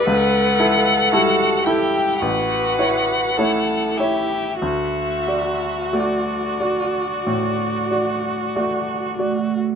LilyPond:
<<
  \new Staff \with { instrumentName = "Violin" } { \time 4/4 \key d \major \tempo 4 = 48 fis''4. g''8 fis''4. e''8 | e''4 d''2~ d''8 r8 | }
  \new Staff \with { instrumentName = "Violin" } { \time 4/4 \key d \major b'4 a'8 g'8 b'4 a'8 g'8 | fis'1 | }
  \new Staff \with { instrumentName = "Cello" } { \time 4/4 \key d \major a'4 fis'8 e'8 fis'4 e'4 | fis'2.~ fis'8 a8 | }
  \new Staff \with { instrumentName = "Grand piano" } { \time 4/4 \key d \major cis,8 <e' a'>8 <g e' a'>8 <e' a'>8 a,,8 <e' cis''>8 <a e' cis''>8 <e' cis''>8 | d,8 <fis' d''>8 <a fis' d''>8 <fis' d''>8 a,8 <fis' d''>8 <a fis' d''>8 <fis' d''>8 | }
>>